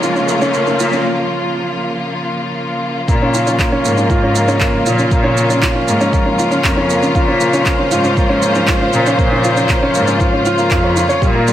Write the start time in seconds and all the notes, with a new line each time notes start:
Already playing: G#2 C#3 F3 A#3 C#4 F4, riser
0.03 F4, shaker
0.16 C#4, shaker
0.28 A#3, shaker
0.41 C#4, shaker
0.54 A#3, shaker
0.67 C#4, shaker
0.80 A#2 F4, shaker
0.92 C#4, shaker
3.08 A#2 C#3 F3 A#3 F4, kick, shaker
3.22 C#4
3.34 F4, shaker
3.47 C#4, shaker
3.59 A#3, kick, clap, shaker
3.72 C#4
3.85 G#2 A#3, shaker
3.98 C#4, shaker
4.10 F4, kick, shaker
4.23 C#4
4.35 A#3, shaker
4.48 C#4, shaker
4.60 A#3, kick, clap, shaker
4.73 C#4
4.86 A#2 F4, shaker
4.99 C#4, shaker
5.11 A#2 A#3, kick, shaker
5.24 C#4
5.36 A#3, shaker
5.49 C#4, shaker
5.62 F4, kick, clap, shaker
5.75 C#4
5.88 G#2 A#3, shaker
6.01 C#4, shaker
6.13 A#3, kick, shaker
6.26 C#4
6.39 F4, shaker
6.51 C#4, shaker
6.64 F2 A#3, kick, clap, shaker
6.77 C#4
6.89 A#3, shaker
7.02 C#4, shaker
7.15 A#2 F4 C5, kick, shaker
7.28 C#4
7.40 A#3, shaker
7.53 C#4, shaker
7.66 A#3, kick, clap, shaker
7.79 C#4
7.91 G#2 F4, shaker
8.04 C#4, shaker
8.17 A#3, kick, shaker
8.29 C#4
8.42 A#3, shaker
8.55 C#4, shaker
8.67 F4, kick, clap, shaker
8.82 C#4
8.93 A#2 A#3, shaker
9.06 C#4, shaker
9.19 A#2 A#3, kick, shaker
9.32 C#4
9.44 F4, shaker
9.57 C#4, shaker
9.69 A#3, kick, clap, shaker
9.83 C#4
9.94 G#2 A#3, shaker
10.07 C#4, shaker
10.20 F4, kick, shaker
10.33 C#4
10.45 F4, shaker
10.58 A#3, shaker
10.71 F2 F4, kick, clap, shaker
10.84 C#5
10.96 F4, shaker
11.09 C#5, shaker
11.22 A#2 D#3 G3 A#3, kick, shaker
11.35 A#3
11.48 G3, shaker